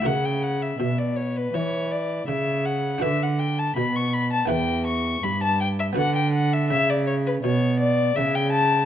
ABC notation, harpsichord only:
X:1
M:4/4
L:1/8
Q:1/4=82
K:Bm
V:1 name="Harpsichord"
[EF^A]8 | [DFB]4 [B,EB]4 | [B,FB]8 |]
V:2 name="Harpsichord" clef=bass
C,2 B,,2 E,2 C,2 | D,2 B,,2 E,,2 G,,2 | D,2 C,2 B,,2 C,2 |]